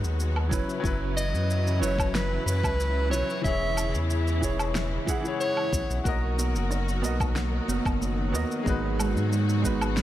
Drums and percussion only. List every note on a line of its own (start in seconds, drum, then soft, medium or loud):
0.04 shaker soft
0.20 shaker soft
0.36 low woodblock medium
0.51 kick loud
0.51 shaker medium
0.70 shaker soft
0.84 kick loud
0.84 shaker soft
1.18 shaker medium
1.35 shaker soft
1.50 shaker soft
1.67 shaker soft
1.83 shaker medium
1.98 kick loud
1.98 low woodblock medium
1.98 shaker soft
2.15 snare medium
2.15 shaker soft
2.48 shaker medium
2.64 kick loud
2.64 low woodblock medium
2.64 shaker soft
2.80 shaker soft
3.13 shaker medium
3.30 shaker soft
3.44 kick loud
3.44 shaker soft
3.77 low woodblock medium
3.77 shaker medium
3.95 shaker soft
4.10 shaker soft
4.28 shaker soft
4.42 kick medium
4.42 shaker medium
4.59 low woodblock medium
4.59 shaker soft
4.75 snare medium
4.75 shaker soft
5.07 kick loud
5.07 shaker medium
5.25 shaker soft
5.41 shaker soft
5.57 low woodblock soft
5.73 kick loud
5.73 shaker medium
5.91 shaker soft
6.05 kick loud
6.05 shaker soft
6.39 shaker medium
6.56 shaker soft
6.71 shaker soft
6.89 shaker soft
7.04 shaker medium
7.20 kick loud
7.20 low woodblock medium
7.20 shaker soft
7.36 snare medium
7.36 shaker soft
7.69 shaker medium
7.85 kick loud
7.85 low woodblock medium
7.85 shaker soft
8.02 shaker soft
8.35 shaker medium
8.52 shaker soft
8.66 kick loud
8.66 shaker soft
9.00 low woodblock medium
9.00 shaker medium
9.17 shaker soft
9.33 shaker soft
9.49 shaker soft
9.64 kick medium
9.64 shaker medium
9.81 low woodblock medium
9.81 shaker soft
9.97 snare medium
9.97 shaker soft